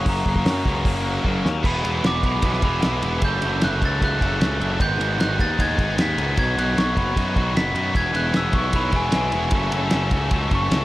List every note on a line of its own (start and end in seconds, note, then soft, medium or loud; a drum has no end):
0.00 0.44 F#2 medium
0.00 0.45 C#3 medium
0.00 0.45 F#3 loud
0.00 0.46 F#3 medium
0.00 0.25 A#3 medium
0.00 0.46 A#3 loud
0.00 0.44 C#4 medium
0.06 0.22 F#1 loud
0.06 1.05 F#2 medium
0.06 1.22 A#5 medium
0.06 kick loud
0.06 open hi-hat medium
0.26 0.42 F#1 loud
0.26 0.84 A#3 medium
0.26 kick medium
0.36 kick medium
0.45 1.43 F#2 medium
0.45 0.62 F#2 loud
0.45 1.43 C#3 medium
0.45 1.44 F#3 medium
0.45 1.44 A#3 medium
0.45 1.43 C#4 medium
0.45 snare loud
0.45 open hi-hat medium
0.65 0.82 C#2 medium
0.65 1.04 F#3 medium
0.65 kick medium
0.85 1.17 F#1 medium
0.85 1.23 A#3 medium
0.85 kick loud
0.85 open hi-hat medium
1.05 1.64 F#3 medium
1.24 1.41 F#1 loud
1.24 1.64 A#3 medium
1.24 kick medium
1.44 1.61 D#2 medium
1.44 1.64 C#4 medium
1.44 snare medium
1.64 1.81 E1 loud
1.64 1.83 E2 medium
1.64 1.83 B2 medium
1.64 1.85 E3 medium
1.64 1.84 G#3 loud
1.64 1.85 B3 loud
1.64 1.86 E4 medium
1.64 1.86 G#4 loud
1.64 2.03 B5 medium
1.64 kick loud
1.64 crash loud
1.84 2.01 E1 medium
1.84 2.02 E2 medium
1.84 2.03 B2 medium
1.84 2.05 E3 medium
1.84 2.02 G#3 medium
1.84 2.05 B3 medium
1.84 2.05 E4 medium
1.84 2.05 G#4 medium
1.84 ride medium
2.04 2.21 E1 medium
2.04 2.22 E2 medium
2.04 2.23 B2 medium
2.04 2.25 E3 medium
2.04 2.22 G#3 medium
2.04 2.24 B3 medium
2.04 2.25 E4 medium
2.04 2.25 G#4 medium
2.04 2.24 D6 loud
2.04 snare loud
2.04 ride medium
2.23 2.40 B1 medium
2.23 2.42 E2 loud
2.23 2.43 B2 medium
2.23 2.43 E3 medium
2.23 2.42 G#3 loud
2.23 2.44 B3 loud
2.23 2.44 E4 loud
2.23 2.45 G#4 loud
2.23 2.63 B5 medium
2.23 kick medium
2.23 ride medium
2.42 2.60 B1 medium
2.42 2.62 E2 medium
2.42 2.63 B2 medium
2.42 2.63 E3 medium
2.42 2.62 G#3 medium
2.42 2.64 B3 medium
2.42 2.64 E4 medium
2.42 2.65 G#4 loud
2.42 kick medium
2.42 ride medium
2.53 snare soft
2.62 2.80 E1 medium
2.62 2.81 E2 medium
2.62 2.82 B2 medium
2.62 2.82 E3 medium
2.62 2.82 G#3 loud
2.62 2.83 B3 medium
2.62 2.84 E4 loud
2.62 2.84 G#4 loud
2.62 3.02 B5 medium
2.62 kick medium
2.62 ride medium
2.82 3.01 B1 medium
2.82 3.02 E2 medium
2.82 3.02 B2 medium
2.82 3.03 E3 medium
2.82 3.02 G#3 medium
2.82 3.04 B3 medium
2.82 3.05 E4 medium
2.82 3.05 G#4 medium
2.82 snare loud
2.82 ride medium
3.03 3.20 E1 medium
3.03 3.21 E2 medium
3.03 3.22 B2 medium
3.03 3.22 E3 medium
3.03 3.21 G#3 medium
3.03 3.22 B3 medium
3.03 3.23 E4 medium
3.03 3.23 G#4 medium
3.03 ride medium
3.22 3.39 F#1 loud
3.22 3.40 F#2 medium
3.22 3.41 C#3 medium
3.22 3.42 F#3 medium
3.22 3.42 A3 loud
3.22 3.43 C#4 medium
3.22 3.43 A4 loud
3.22 3.62 G6 medium
3.22 kick loud
3.22 ride medium
3.41 3.60 F#1 medium
3.41 3.60 F#2 medium
3.41 3.61 C#3 medium
3.41 3.63 F#3 medium
3.41 3.62 A3 medium
3.41 3.63 C#4 medium
3.41 3.63 A4 medium
3.41 ride medium
3.62 3.79 F#1 medium
3.62 3.80 F#2 medium
3.62 3.81 C#3 medium
3.62 3.82 F#3 medium
3.62 3.82 A3 medium
3.62 3.82 C#4 loud
3.62 3.83 A4 medium
3.62 3.82 F#6 medium
3.62 snare medium
3.62 ride medium
3.81 3.99 C#2 medium
3.81 3.99 F#2 medium
3.81 3.99 C#3 medium
3.81 4.01 F#3 loud
3.81 4.01 A3 loud
3.81 4.01 C#4 medium
3.81 4.01 A4 loud
3.81 kick medium
3.81 ride medium
3.85 4.03 A6 medium
4.00 4.18 C#2 loud
4.00 4.18 F#2 medium
4.00 4.19 C#3 medium
4.00 4.21 F#3 medium
4.00 4.20 A3 medium
4.00 4.21 C#4 loud
4.00 4.21 A4 medium
4.00 kick medium
4.00 ride medium
4.05 4.22 F#6 loud
4.20 4.38 F#1 medium
4.20 4.39 F#2 medium
4.20 4.39 C#3 loud
4.20 4.40 F#3 medium
4.20 4.41 A3 medium
4.20 4.41 C#4 medium
4.20 4.41 A4 loud
4.20 kick medium
4.20 ride medium
4.40 4.58 C#2 medium
4.40 4.59 F#2 medium
4.40 4.59 C#3 medium
4.40 4.61 F#3 medium
4.40 4.60 A3 medium
4.40 4.61 C#4 medium
4.40 4.61 A4 medium
4.40 snare loud
4.40 ride medium
4.60 4.77 F#1 medium
4.60 4.78 F#2 medium
4.60 4.79 C#3 medium
4.60 4.79 F#3 medium
4.60 4.80 A3 medium
4.60 4.80 C#4 medium
4.60 4.80 A4 medium
4.60 ride medium
4.78 4.97 G#1 medium
4.78 4.97 G#2 medium
4.78 4.98 D#3 medium
4.78 4.98 G#3 loud
4.78 4.99 B3 loud
4.78 5.00 D#4 loud
4.78 4.99 G#4 medium
4.78 5.19 G6 loud
4.78 kick loud
4.78 ride medium
4.98 5.17 G#1 loud
4.98 5.17 G#2 medium
4.98 5.18 D#3 medium
4.98 5.18 G#3 loud
4.98 5.19 B3 medium
4.98 5.20 D#4 medium
4.98 5.19 G#4 loud
4.98 ride medium
5.18 5.37 G#1 medium
5.18 5.37 G#2 medium
5.18 5.37 D#3 medium
5.18 5.38 G#3 medium
5.18 5.39 B3 medium
5.18 5.40 D#4 medium
5.18 5.40 G#4 medium
5.18 5.39 F#6 medium
5.18 snare loud
5.18 ride medium
5.38 5.56 D#2 medium
5.38 5.56 G#2 medium
5.38 5.57 D#3 medium
5.38 5.57 G#3 medium
5.38 5.59 B3 loud
5.38 5.59 D#4 loud
5.38 5.59 G#4 loud
5.38 5.59 A6 medium
5.38 kick loud
5.38 ride medium
5.58 5.76 D#2 medium
5.58 5.75 G#2 medium
5.58 5.77 D#3 medium
5.58 5.77 G#3 loud
5.58 5.79 B3 loud
5.58 5.78 D#4 medium
5.58 5.79 G#4 medium
5.58 5.79 G#6 loud
5.58 kick medium
5.58 ride loud
5.77 5.95 G#1 medium
5.77 5.95 G#2 loud
5.77 5.96 D#3 medium
5.77 5.96 G#3 medium
5.77 5.98 B3 medium
5.77 5.98 D#4 loud
5.77 5.98 G#4 loud
5.77 kick medium
5.77 ride medium
5.96 6.15 D#2 medium
5.96 6.16 G#2 medium
5.96 6.16 D#3 medium
5.96 6.16 G#3 medium
5.96 6.18 B3 medium
5.96 6.18 D#4 medium
5.96 6.18 G#4 medium
5.96 snare loud
5.96 ride loud
6.01 6.38 B6 medium
6.17 6.35 C#2 loud
6.17 6.36 G#2 medium
6.17 6.35 D#3 medium
6.17 6.36 G#3 medium
6.17 6.37 B3 medium
6.17 6.37 D#4 medium
6.17 6.37 G#4 medium
6.17 ride medium
6.36 6.55 B1 loud
6.36 6.55 B2 medium
6.36 6.56 D#3 loud
6.36 6.56 F#3 loud
6.36 6.58 B3 medium
6.36 6.57 D#4 medium
6.36 6.57 F#4 medium
6.36 6.58 G#6 loud
6.36 kick loud
6.36 ride medium
6.56 6.74 B1 loud
6.56 6.74 B2 medium
6.56 6.76 D#3 medium
6.56 6.75 F#3 medium
6.56 6.76 B3 medium
6.56 6.76 D#4 medium
6.56 6.76 F#4 loud
6.56 6.77 F#6 medium
6.56 ride medium
6.75 6.94 B1 medium
6.75 6.94 B2 medium
6.75 6.95 D#3 medium
6.75 6.95 F#3 medium
6.75 6.97 B3 medium
6.75 6.96 D#4 medium
6.75 6.96 F#4 medium
6.75 6.97 C#6 medium
6.75 snare loud
6.75 ride medium
6.95 7.14 F#1 medium
6.95 7.14 B2 medium
6.95 7.15 D#3 medium
6.95 7.15 F#3 medium
6.95 7.15 B3 medium
6.95 7.16 D#4 medium
6.95 7.16 F#4 medium
6.95 7.35 B5 medium
6.95 kick medium
6.95 ride medium
7.15 7.34 F#2 medium
7.15 7.34 B2 medium
7.15 7.34 D#3 medium
7.15 7.35 F#3 medium
7.15 7.36 B3 medium
7.15 7.36 D#4 medium
7.15 7.37 F#4 medium
7.15 kick medium
7.15 ride medium
7.35 7.53 B1 medium
7.35 7.53 B2 loud
7.35 7.53 D#3 medium
7.35 7.54 F#3 loud
7.35 7.54 B3 loud
7.35 7.54 D#4 loud
7.35 7.55 F#4 loud
7.35 kick medium
7.35 ride medium
7.54 7.73 F#1 medium
7.54 7.73 B2 medium
7.54 7.73 D#3 medium
7.54 7.73 F#3 medium
7.54 7.74 B3 medium
7.54 7.74 D#4 medium
7.54 7.75 F#4 medium
7.54 7.95 B6 loud
7.54 snare loud
7.54 ride medium
7.74 7.92 F#2 medium
7.74 7.93 B2 medium
7.74 7.92 D#3 medium
7.74 7.94 F#3 medium
7.74 7.94 B3 medium
7.74 7.94 D#4 medium
7.74 7.94 F#4 medium
7.74 ride medium
7.93 8.12 E1 loud
7.93 8.12 E2 loud
7.93 8.13 B2 loud
7.93 8.14 E3 medium
7.93 8.12 G#3 loud
7.93 8.14 B3 loud
7.93 8.15 E4 loud
7.93 8.15 G#4 medium
7.93 kick loud
7.93 ride medium
7.97 8.15 G#6 medium
8.13 8.32 E1 medium
8.13 8.31 E2 medium
8.13 8.32 B2 medium
8.13 8.33 E3 medium
8.13 8.31 G#3 medium
8.13 8.33 B3 medium
8.13 8.34 E4 medium
8.13 8.34 G#4 medium
8.13 8.35 F#6 medium
8.13 ride medium
8.32 8.52 E1 medium
8.32 8.51 E2 medium
8.32 8.52 B2 medium
8.32 8.54 E3 medium
8.32 8.51 G#3 medium
8.32 8.53 B3 medium
8.32 8.54 E4 medium
8.32 8.54 G#4 medium
8.32 snare loud
8.32 ride medium
8.37 8.55 E6 medium
8.52 8.71 B1 medium
8.52 8.71 E2 medium
8.52 8.73 B2 medium
8.52 8.73 E3 loud
8.52 8.71 G#3 medium
8.52 8.74 B3 loud
8.52 8.74 E4 loud
8.52 8.75 G#4 medium
8.52 8.74 C#6 medium
8.52 kick medium
8.52 ride medium
8.72 8.91 B1 medium
8.72 8.91 E2 medium
8.72 8.92 B2 medium
8.72 8.93 E3 medium
8.72 8.91 G#3 medium
8.72 8.93 B3 medium
8.72 8.93 E4 loud
8.72 8.94 G#4 medium
8.72 8.94 B5 medium
8.72 kick medium
8.72 ride loud
8.92 9.10 E1 medium
8.92 9.11 E2 medium
8.92 9.12 B2 medium
8.92 9.12 E3 loud
8.92 9.11 G#3 medium
8.92 9.13 B3 loud
8.92 9.13 E4 loud
8.92 9.14 G#4 loud
8.92 9.14 G#5 medium
8.92 kick medium
8.92 ride medium
9.12 9.31 B1 medium
9.12 9.30 E2 medium
9.12 9.30 B2 medium
9.12 9.31 E3 medium
9.12 9.30 G#3 loud
9.12 9.31 B3 medium
9.12 9.32 E4 medium
9.12 9.32 G#4 medium
9.12 snare loud
9.12 ride loud
9.16 9.34 G#5 medium
9.31 9.50 E1 medium
9.31 9.51 E2 medium
9.31 9.51 B2 medium
9.31 9.51 E3 medium
9.31 9.51 G#3 medium
9.31 9.52 B3 medium
9.31 9.52 E4 medium
9.31 9.52 G#4 medium
9.31 ride medium
9.51 9.69 F#1 loud
9.51 9.69 F#2 medium
9.51 9.70 C#3 loud
9.51 9.71 F#3 loud
9.51 9.71 A3 loud
9.51 9.71 C#4 loud
9.51 9.72 A4 medium
9.51 kick loud
9.51 ride loud
9.70 9.90 F#1 loud
9.70 9.90 F#2 medium
9.70 9.91 C#3 medium
9.70 9.92 F#3 medium
9.70 9.91 A3 medium
9.70 9.92 C#4 medium
9.70 9.93 A4 medium
9.70 ride medium
9.91 10.10 F#1 medium
9.91 10.09 F#2 medium
9.91 10.10 C#3 medium
9.91 10.12 F#3 medium
9.91 10.12 A3 loud
9.91 10.12 C#4 medium
9.91 10.12 A4 medium
9.91 snare loud
9.91 ride medium
10.11 10.29 C#2 medium
10.11 10.28 F#2 medium
10.11 10.29 C#3 medium
10.11 10.30 F#3 loud
10.11 10.30 A3 medium
10.11 10.30 C#4 loud
10.11 10.31 A4 loud
10.11 kick medium
10.11 ride medium
10.29 10.48 C#2 medium
10.29 10.49 F#2 medium
10.29 10.49 C#3 medium
10.29 10.51 F#3 medium
10.29 10.50 A3 medium
10.29 10.51 C#4 medium
10.29 10.51 A4 medium
10.29 kick medium
10.29 ride medium
10.50 10.68 F#1 medium
10.50 10.68 F#2 loud
10.50 10.69 C#3 medium
10.50 10.70 F#3 medium
10.50 10.70 A3 loud
10.50 10.71 C#4 loud
10.50 10.71 A4 loud
10.50 kick medium
10.50 ride medium
10.55 10.85 C#6 medium
10.69 10.85 C#2 loud
10.69 10.85 F#2 medium
10.69 10.85 C#3 medium
10.69 10.85 F#3 medium
10.69 10.85 A3 medium
10.69 10.85 C#4 medium
10.69 10.85 A4 medium
10.69 snare loud
10.69 ride medium